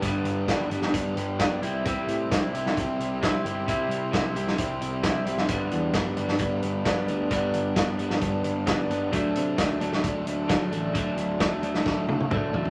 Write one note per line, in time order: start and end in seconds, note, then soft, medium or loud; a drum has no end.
0.00 0.23 G1 medium
0.00 0.71 G2 medium
0.00 0.71 D3 medium
0.00 0.46 G3 medium
0.00 0.46 B3 medium
0.00 0.47 D4 medium
0.00 9.09 G4 medium
0.00 0.49 G4 medium
0.00 1.59 B4 medium
0.00 1.59 D5 medium
0.00 1.59 B5 medium
0.00 kick loud
0.00 closed hi-hat medium
0.24 0.46 G1 medium
0.24 closed hi-hat medium
0.47 0.69 G1 medium
0.47 0.94 D3 medium
0.47 0.71 G3 medium
0.47 0.70 B3 medium
0.47 0.69 D4 medium
0.47 0.69 G4 medium
0.47 kick loud
0.47 snare loud
0.47 closed hi-hat medium
0.69 0.92 G1 medium
0.69 0.94 G3 medium
0.69 0.94 B3 medium
0.69 0.94 D4 medium
0.69 0.95 G4 medium
0.69 closed hi-hat medium
0.82 snare medium
0.93 1.15 G1 medium
0.93 1.39 G2 medium
0.93 1.40 D3 medium
0.93 1.19 G3 medium
0.93 1.17 B3 medium
0.93 1.16 D4 medium
0.93 1.16 G4 loud
0.93 kick loud
0.93 closed hi-hat loud
1.16 1.37 G1 medium
1.16 1.63 G3 medium
1.16 1.62 B3 medium
1.16 1.62 D4 medium
1.16 1.61 G4 medium
1.16 closed hi-hat medium
1.39 1.60 G1 medium
1.39 1.61 G2 medium
1.39 1.61 D3 medium
1.39 1.64 G3 medium
1.39 1.62 B3 medium
1.39 1.62 D4 medium
1.39 kick loud
1.39 snare loud
1.39 closed hi-hat medium
1.61 1.83 C2 medium
1.61 1.84 C3 medium
1.61 1.85 G3 medium
1.61 1.86 C4 medium
1.61 1.86 E4 medium
1.61 1.87 G4 medium
1.61 5.46 C5 medium
1.61 5.45 E5 medium
1.61 5.46 C6 medium
1.61 closed hi-hat medium
1.85 2.06 C2 medium
1.85 2.76 C3 medium
1.85 2.30 G3 medium
1.85 2.31 C4 medium
1.85 2.32 E4 medium
1.85 2.33 G4 medium
1.85 kick loud
1.85 closed hi-hat medium
2.08 2.29 A2 medium
2.08 closed hi-hat medium
2.30 2.52 C2 medium
2.30 3.21 C3 medium
2.30 2.76 G3 medium
2.30 2.56 C4 medium
2.30 2.54 E4 medium
2.30 2.53 G4 medium
2.30 kick loud
2.30 snare loud
2.30 closed hi-hat medium
2.53 2.75 C2 medium
2.53 3.22 G3 medium
2.53 2.76 C4 medium
2.53 2.77 E4 medium
2.53 2.78 G4 medium
2.53 closed hi-hat medium
2.66 snare medium
2.76 2.98 C2 medium
2.76 3.22 C3 medium
2.76 3.67 G3 medium
2.76 3.00 C4 medium
2.76 2.99 E4 medium
2.76 2.99 G4 loud
2.76 kick loud
2.76 closed hi-hat medium
2.99 3.20 C2 medium
2.99 3.46 C4 medium
2.99 3.45 E4 medium
2.99 3.44 G4 medium
2.99 closed hi-hat medium
3.22 3.43 C2 medium
3.22 3.65 C3 medium
3.22 3.46 G3 medium
3.22 3.44 C4 medium
3.22 3.42 E4 medium
3.22 kick loud
3.22 snare loud
3.22 closed hi-hat medium
3.44 3.65 G1 medium
3.44 3.67 G3 medium
3.44 3.67 C4 medium
3.44 3.68 E4 medium
3.44 3.69 G4 medium
3.44 closed hi-hat medium
3.67 3.88 C2 medium
3.67 4.35 C3 medium
3.67 4.12 G3 medium
3.67 4.12 C4 medium
3.67 4.12 E4 medium
3.67 4.14 G4 loud
3.67 kick loud
3.67 closed hi-hat medium
3.89 4.10 C2 medium
3.89 closed hi-hat medium
4.11 4.34 C2 medium
4.11 4.58 C3 medium
4.11 4.58 G3 medium
4.11 4.37 C4 medium
4.11 4.35 E4 medium
4.11 4.35 G4 medium
4.11 kick loud
4.11 snare loud
4.11 closed hi-hat medium
4.35 4.56 C2 medium
4.35 5.03 G3 medium
4.35 4.58 C4 medium
4.35 4.59 E4 medium
4.35 4.59 G4 medium
4.35 closed hi-hat medium
4.48 snare medium
4.57 4.80 C2 medium
4.57 5.04 C3 medium
4.57 5.49 G3 medium
4.57 4.82 C4 medium
4.57 4.81 E4 medium
4.57 4.80 G4 medium
4.57 kick loud
4.57 closed hi-hat medium
4.81 5.02 C2 medium
4.81 5.27 C4 medium
4.81 5.27 E4 medium
4.81 5.26 G4 medium
4.81 closed hi-hat medium
5.03 5.25 C2 medium
5.03 5.48 C3 medium
5.03 5.28 G3 medium
5.03 5.26 C4 medium
5.03 5.24 E4 medium
5.03 kick loud
5.03 snare loud
5.03 closed hi-hat medium
5.26 5.47 C2 medium
5.26 5.49 G3 medium
5.26 5.49 C4 medium
5.26 5.49 E4 medium
5.26 8.76 G4 medium
5.26 closed hi-hat medium
5.38 snare medium
5.48 5.70 G1 medium
5.48 6.39 G2 medium
5.48 5.93 D3 medium
5.48 5.94 G3 medium
5.48 5.95 B3 medium
5.48 5.96 D4 loud
5.48 9.10 B4 medium
5.48 9.10 D5 medium
5.48 7.30 B5 medium
5.48 kick loud
5.48 closed hi-hat loud
5.71 5.93 E2 medium
5.71 closed hi-hat medium
5.93 6.16 G1 medium
5.93 6.38 D3 medium
5.93 6.18 G3 medium
5.93 6.17 B3 medium
5.93 6.16 D4 medium
5.93 kick loud
5.93 snare loud
5.93 closed hi-hat medium
6.16 6.39 G1 medium
6.16 6.39 G3 medium
6.16 6.40 B3 medium
6.16 6.41 D4 medium
6.16 closed hi-hat medium
6.28 snare medium
6.39 6.61 G1 medium
6.39 6.85 G2 medium
6.39 6.85 D3 medium
6.39 6.63 G3 medium
6.39 6.62 B3 medium
6.39 6.62 D4 loud
6.39 kick loud
6.39 closed hi-hat medium
6.62 6.84 G1 medium
6.62 7.08 G3 medium
6.62 7.07 B3 medium
6.62 7.06 D4 medium
6.62 closed hi-hat medium
6.85 7.06 G1 medium
6.85 7.29 G2 medium
6.85 7.30 D3 medium
6.85 7.09 G3 medium
6.85 7.08 B3 medium
6.85 7.07 D4 loud
6.85 kick loud
6.85 snare loud
6.85 closed hi-hat medium
7.07 7.30 D2 medium
7.07 7.30 G3 medium
7.07 7.30 B3 medium
7.07 7.32 D4 medium
7.07 closed hi-hat medium
7.29 7.52 G1 medium
7.29 7.99 G2 medium
7.29 7.74 D3 medium
7.29 7.75 G3 medium
7.29 7.76 B3 loud
7.29 7.77 D4 loud
7.29 9.11 A5 medium
7.29 kick loud
7.29 closed hi-hat medium
7.54 7.75 G1 medium
7.54 closed hi-hat medium
7.75 7.97 G1 medium
7.75 8.20 D3 medium
7.75 7.99 G3 medium
7.75 7.98 B3 medium
7.75 7.97 D4 medium
7.75 kick loud
7.75 snare loud
7.75 closed hi-hat medium
7.98 8.20 G1 medium
7.98 8.21 G3 medium
7.98 8.21 B3 medium
7.98 8.22 D4 medium
7.98 closed hi-hat medium
8.10 snare medium
8.20 8.43 G1 medium
8.20 8.67 G2 medium
8.20 8.67 D3 medium
8.20 8.45 G3 medium
8.20 8.43 B3 medium
8.20 8.43 D4 loud
8.20 kick loud
8.20 closed hi-hat medium
8.43 8.65 G1 medium
8.43 8.90 G3 medium
8.43 8.89 B3 medium
8.43 8.88 D4 medium
8.43 closed hi-hat medium
8.66 8.88 G1 medium
8.66 9.11 G2 medium
8.66 9.10 D3 medium
8.66 8.91 G3 medium
8.66 8.90 B3 medium
8.66 8.89 D4 medium
8.66 kick loud
8.66 snare loud
8.66 closed hi-hat medium
8.88 9.11 G1 medium
8.88 9.12 G3 medium
8.88 9.12 B3 medium
8.88 9.13 D4 medium
8.88 closed hi-hat medium
9.11 9.34 D2 medium
9.11 9.56 D3 medium
9.11 9.58 F#3 loud
9.11 9.58 A3 medium
9.11 9.59 D4 loud
9.11 12.70 F#4 medium
9.11 12.70 A4 medium
9.11 10.93 D5 medium
9.11 12.70 A5 medium
9.11 kick loud
9.11 closed hi-hat medium
9.35 9.57 C3 medium
9.35 closed hi-hat medium
9.57 9.79 D2 medium
9.57 10.02 D3 medium
9.57 9.83 F#3 medium
9.57 9.81 A3 medium
9.57 9.80 D4 medium
9.57 kick loud
9.57 snare loud
9.57 closed hi-hat loud
9.80 10.02 D2 medium
9.80 10.02 F#3 medium
9.80 10.03 A3 medium
9.80 10.05 D4 medium
9.80 closed hi-hat medium
9.93 snare medium
10.02 10.25 D2 medium
10.02 10.49 D3 medium
10.02 10.27 F#3 medium
10.02 10.26 A3 medium
10.02 10.25 D4 loud
10.02 kick loud
10.02 closed hi-hat medium
10.26 10.47 D2 medium
10.26 10.72 F#3 medium
10.26 10.71 A3 medium
10.26 10.71 D4 medium
10.26 closed hi-hat medium
10.48 10.70 D2 medium
10.48 10.92 D3 medium
10.48 10.73 F#3 loud
10.48 10.72 A3 medium
10.48 10.71 D4 medium
10.48 kick loud
10.48 snare loud
10.48 closed hi-hat medium
10.71 10.93 A1 medium
10.71 10.92 F#3 medium
10.71 10.93 A3 medium
10.71 10.94 D4 medium
10.71 closed hi-hat medium
10.93 11.16 D2 medium
10.93 11.38 D3 medium
10.93 11.39 F#3 medium
10.93 11.40 A3 loud
10.93 11.41 D4 loud
10.93 12.70 E5 medium
10.93 kick loud
10.93 closed hi-hat medium
11.17 11.38 D2 medium
11.17 closed hi-hat medium
11.39 11.61 D2 medium
11.39 11.83 D3 medium
11.39 11.63 F#3 medium
11.39 11.62 A3 medium
11.39 11.60 D4 medium
11.39 kick loud
11.39 snare loud
11.39 closed hi-hat medium
11.62 11.83 D2 medium
11.62 11.84 F#3 medium
11.62 11.85 A3 medium
11.62 11.86 D4 medium
11.62 closed hi-hat medium
11.75 snare medium
11.85 12.06 D2 medium
11.85 12.30 D3 loud
11.85 12.09 F#3 medium
11.85 12.08 A3 loud
11.85 12.06 D4 loud
11.85 kick loud
11.85 snare medium
12.07 12.29 D2 medium
12.07 12.54 F#3 medium
12.07 12.52 A3 medium
12.07 12.51 D4 medium
12.07 high tom medium
12.20 high tom medium
12.31 12.51 D2 medium
12.31 12.70 D3 medium
12.31 12.55 F#3 medium
12.31 12.54 A3 loud
12.31 12.52 D4 loud
12.31 kick loud
12.31 mid tom medium
12.52 12.70 A1 medium
12.52 12.70 F#3 medium
12.52 12.70 A3 medium
12.52 12.70 D4 medium
12.52 floor tom loud
12.65 floor tom medium